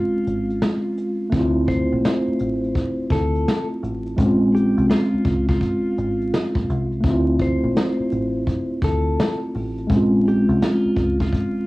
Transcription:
Already playing: G#3 C4 C#4 F4
0.27 G#1, closed hi-hat
0.50 closed hi-hat
0.62 snare, closed hi-hat
0.98 closed hi-hat
1.30 D2 A3 C4, kick, closed hi-hat
1.36 E4 F4
1.68 C5, kick, closed hi-hat
1.93 A#1
2.04 snare, closed hi-hat
2.28 muted fingered electric bass stroke
2.39 A1, closed hi-hat
2.64 closed hi-hat
2.75 kick, closed hi-hat
3.10 D2 A4, kick, closed hi-hat
3.35 closed hi-hat
3.48 snare, closed hi-hat
3.83 A1, closed hi-hat
4.06 closed hi-hat
4.17 A#1 G#3 C4, kick, closed hi-hat
4.23 C#4 F4
4.55 G4, closed hi-hat
4.78 C2, closed hi-hat
4.90 F4, snare, closed hi-hat
5.13 muted fingered electric bass stroke
5.25 C#2, kick, closed hi-hat
5.49 F4, kick, closed hi-hat
5.61 kick, closed hi-hat
5.98 G#1, closed hi-hat
6.21 closed hi-hat
6.34 snare, closed hi-hat
6.55 A#1, kick
6.70 C2, closed hi-hat
6.92 closed hi-hat
7.01 D2 A3 C4, kick
7.05 E4, closed hi-hat
7.10 F4
7.39 C5, kick, closed hi-hat
7.64 A#1
7.76 snare, closed hi-hat
8.00 muted fingered electric bass stroke
8.11 A1, closed hi-hat
8.47 kick, closed hi-hat
8.82 D2 A4, kick, closed hi-hat
9.20 snare, closed hi-hat
9.55 A1, open hi-hat
9.78 closed hi-hat
9.87 A#1 G#3 C4, kick
9.91 C#4, closed hi-hat
9.97 F4
10.28 G4, closed hi-hat
10.49 C2, closed hi-hat
10.62 F4, snare, closed hi-hat
10.85 muted fingered electric bass stroke
10.96 C#2, kick, closed hi-hat
11.20 F4, kick
11.33 kick, closed hi-hat

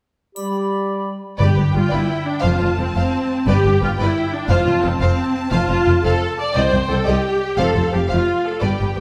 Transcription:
0.35 G3 G4 D5 B5, triangle
1.38 G1 G2 G4 B4 D5 G5
1.55 G1 B4
1.59 G2
1.72 G1 F4 G4 B4
1.76 G2
1.89 G1 E4 B4 D5
1.93 G2
2.26 D4
2.41 F1 F4 C5 F5 A5
2.45 F2
2.58 F1 C5
2.62 F2
2.77 F1 F2 C4 A4 C5
2.95 F1 F2 C4 C5 F5
3.47 G1 G2 G4 B4 D5 G5
3.64 G1 G2 B4
3.81 G1 G2 F4 G4 B4
3.98 G1 G2 E4 B4 D5
4.33 D4
4.49 F1 F2 F4 C5 F5 A5
4.66 F1 F2 C5
4.82 F1 F2 C4 A4 C5
5.00 F1 F2 C4 C5 F5
5.51 F1 F2 F4 C5 F5
5.69 F1 F2 C5
5.86 F1 F2 A4 C5
6.04 F1 F2 A4 C5 F5
6.40 D5
6.54 C2 C5 D5 D#5 G5
6.71 C2 D5
6.89 C2 A4 C5 D5
7.05 C2 D5 D#5
7.09 G4
7.58 F1 F2 A4 C5 F5
7.75 F1 F2 C5
7.91 F1 F2 G4 A4 C5
8.08 F1 F2 F4 C5 F5
8.45 A4
8.60 G1 G2 G4 B4 D5 G5
8.81 G1 G2 B4
8.96 G4 B4

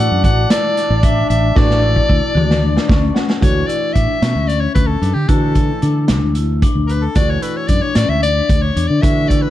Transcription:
Already playing: E3 A3 D4 E4 F#4 F#5
0.11 F#2
0.24 A1 F#4 F#5, kick, closed hi-hat
0.50 E4 D5, snare, closed hi-hat
0.77 snare, closed hi-hat
0.90 A1
1.03 D4 E5, kick, closed hi-hat
1.29 A1 D4 E5, closed hi-hat
1.55 A1 E3 A3 D4 F#4 D5, kick, snare
1.70 snare
1.82 E4
1.96 kick
2.09 D2 E4, kick
2.35 D2 F#4, mid tom
2.50 snare
2.62 D4
2.77 snare
2.88 D2 C#4 D5, kick, snare
3.14 F#5, snare
3.30 snare
3.41 D2 E3 A3 D4 F#4 C#5, kick, closed hi-hat
3.67 E4 D5, closed hi-hat
3.93 A1 D4 E5, kick, closed hi-hat
4.22 B2 C#4, snare, closed hi-hat
4.35 D2
4.47 C#4 D5, closed hi-hat
4.60 C#5
4.74 D2 B4, kick, closed hi-hat
4.87 A4
5.02 F#2 D4, closed hi-hat
5.14 D3 G4
5.28 D3 E3 A3 D4 F#4 A4, kick, closed hi-hat
5.55 E4, kick, closed hi-hat
5.82 D3 D4, closed hi-hat
6.08 C#2 D4, snare, closed hi-hat
6.23 D2
6.35 E4, closed hi-hat
6.62 D4, kick, closed hi-hat
6.75 D2
6.87 A#4 B4, closed hi-hat
7.02 A4
7.15 D2 E3 A3 D4 F#4 D5, kick, closed hi-hat
7.30 C#5
7.42 E4 B4, closed hi-hat
7.56 C#5
7.68 F#2 D4 D5, kick, closed hi-hat
7.82 C#5
7.95 A2 C#4 D5, snare, closed hi-hat
8.09 D2 E5
8.22 D4 D5, closed hi-hat
8.49 D2, kick, closed hi-hat
8.62 C#5
8.76 E2 D4, closed hi-hat
8.88 D3 D5
9.01 D3 E3 A3 D4 F#4 E5, kick, closed hi-hat
9.28 E4 D5, kick, closed hi-hat
9.42 B4

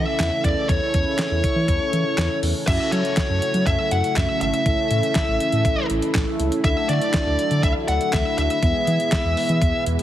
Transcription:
Already playing: C#3 E3 A3 C#4 E4 A4 E5
0.20 E2, snare, clap, closed hi-hat
0.44 E2 D5, kick, closed hi-hat
0.69 E2 C#5, kick, closed hi-hat
0.94 E2, kick, closed hi-hat
1.19 snare, clap, closed hi-hat
1.31 E2
1.44 kick, closed hi-hat
1.56 E3
1.68 E2, kick, closed hi-hat
1.93 E3, closed hi-hat
2.18 E2, snare, clap, closed hi-hat
2.43 E2, open hi-hat
2.67 F#2 C#3 F#3 A3 C#4 E4 F#4 A4 E5, kick, closed hi-hat, crash
2.92 F#3 C#5, closed hi-hat
3.05 closed hi-hat
3.17 kick, snare, clap, closed hi-hat
3.30 F#2
3.42 closed hi-hat
3.54 F#3, closed hi-hat
3.66 F#2 E5, kick, closed hi-hat
3.91 F#2 F#5, closed hi-hat
4.04 closed hi-hat
4.16 F#2 E5, kick, snare, clap, closed hi-hat
4.41 G#1 E5, closed hi-hat
4.54 closed hi-hat
4.66 A1 E3 C#4 E4 A4, kick, closed hi-hat
4.91 A2, closed hi-hat
5.03 closed hi-hat
5.15 kick, snare, clap, closed hi-hat
5.28 A1
5.40 closed hi-hat
5.52 A2, closed hi-hat
5.65 A1, kick, closed hi-hat
5.90 A1, closed hi-hat
6.02 closed hi-hat
6.15 A1, kick, snare, clap, closed hi-hat
6.39 C#2, closed hi-hat
6.52 closed hi-hat
6.64 D2 D3 D4 F#4 A4 E5, kick, closed hi-hat
6.89 D3 D5, closed hi-hat
7.02 closed hi-hat
7.14 kick, snare, clap, closed hi-hat
7.26 D2
7.39 closed hi-hat
7.51 D3, closed hi-hat
7.63 D2 E5, kick, closed hi-hat
7.88 D2 F#5, closed hi-hat
8.01 closed hi-hat
8.13 D2 E5, kick, snare, clap, closed hi-hat
8.38 D2 E5, closed hi-hat
8.50 closed hi-hat
8.63 E2 B2 E3 G#3 B3 E4 G#4, kick, closed hi-hat
8.87 E3, closed hi-hat
9.00 closed hi-hat
9.12 kick, snare, clap, closed hi-hat
9.25 E2
9.37 open hi-hat
9.49 E3, closed hi-hat
9.62 E2, kick, closed hi-hat
9.86 E2, closed hi-hat
9.99 closed hi-hat

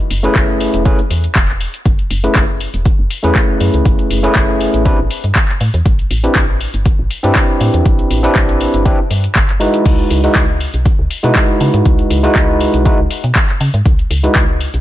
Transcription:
0.10 F#1, open hi-hat
0.23 A3 C#4 E4 G#4 B4, closed hi-hat
0.35 F#1, kick, clap, closed hi-hat
0.60 open hi-hat
0.74 E1, closed hi-hat
0.85 A3 C#4 E4 G#4 B4, kick, closed hi-hat
0.99 closed hi-hat
1.10 E2, open hi-hat
1.24 closed hi-hat
1.35 E1, kick, clap, closed hi-hat
1.49 clap
1.61 open hi-hat
1.74 closed hi-hat
1.85 F#1, kick, closed hi-hat
1.99 closed hi-hat
2.10 F#1, open hi-hat
2.23 A3 C#4 E4 G#4 B4, closed hi-hat
2.35 F#1, kick, clap, closed hi-hat
2.60 open hi-hat
2.74 E1, closed hi-hat
2.85 kick, closed hi-hat
2.99 F#1
3.10 open hi-hat
3.23 E2 A3 C#4 E4 G#4 B4, closed hi-hat
3.35 kick, clap, closed hi-hat
3.60 F#2, open hi-hat
3.74 C#2, closed hi-hat
3.85 F#1, kick, closed hi-hat
3.99 closed hi-hat
4.11 F#1, open hi-hat
4.23 A3 C#4 E4 G#4 B4, closed hi-hat
4.35 F#1, kick, clap, closed hi-hat
4.61 open hi-hat
4.74 A1, closed hi-hat
4.85 C4 D4 E4 G4 B4, kick, closed hi-hat
4.99 A1
5.11 open hi-hat
5.24 G2, closed hi-hat
5.35 kick, clap, closed hi-hat
5.49 clap
5.61 A2, open hi-hat
5.74 E2, closed hi-hat
5.86 A1, kick, closed hi-hat
5.99 closed hi-hat
6.11 A1, open hi-hat
6.23 C4 D4 E4 G4 B4, closed hi-hat
6.35 A1, kick, clap, closed hi-hat
6.61 open hi-hat
6.74 G1, closed hi-hat
6.86 kick, closed hi-hat
6.99 A1
7.11 open hi-hat
7.23 G2 C4 D4 E4 G4 B4, closed hi-hat
7.35 kick, clap, closed hi-hat
7.61 A2, open hi-hat
7.74 E2, closed hi-hat
7.86 A1, kick, closed hi-hat
7.99 closed hi-hat
8.11 A1, open hi-hat
8.23 C4 D4 E4 G4 B4, closed hi-hat
8.35 A1, kick, clap, closed hi-hat
8.49 closed hi-hat
8.61 open hi-hat
8.74 G1, closed hi-hat
8.85 C4 D4 E4 G4 B4, kick, closed hi-hat
9.11 G2, open hi-hat
9.24 closed hi-hat
9.35 G1, kick, clap, closed hi-hat
9.49 clap, closed hi-hat
9.60 G#3 D#4 E4 F#4 B4, open hi-hat
9.74 closed hi-hat
9.86 C#2, kick, closed hi-hat, crash
9.99 closed hi-hat
10.10 C#2, open hi-hat
10.23 G#3 D#4 E4 F#4 B4, closed hi-hat
10.35 C#2, kick, clap, closed hi-hat
10.61 open hi-hat
10.74 B1, closed hi-hat
10.85 kick, closed hi-hat
10.99 C#2
11.11 open hi-hat
11.23 B2 G#3 D#4 E4 F#4 B4, closed hi-hat
11.35 kick, clap, closed hi-hat
11.61 C#3, open hi-hat
11.74 G#2, closed hi-hat
11.85 C#2, kick, closed hi-hat
11.99 closed hi-hat
12.10 C#2, open hi-hat
12.23 G#3 D#4 E4 F#4 B4, closed hi-hat
12.35 C#2, kick, clap, closed hi-hat
12.61 open hi-hat
12.74 B1, closed hi-hat
12.85 G#3 D#4 E4 F#4 B4, kick, closed hi-hat
12.99 C#2
13.11 open hi-hat
13.24 B2, closed hi-hat
13.35 kick, clap, closed hi-hat
13.49 clap
13.60 C#3, open hi-hat
13.74 G#2, closed hi-hat
13.86 C#2, kick, closed hi-hat
13.99 closed hi-hat
14.10 C#2, open hi-hat
14.23 G#3 D#4 E4 F#4 B4, closed hi-hat
14.35 C#2, kick, clap, closed hi-hat
14.61 open hi-hat
14.74 B1, closed hi-hat

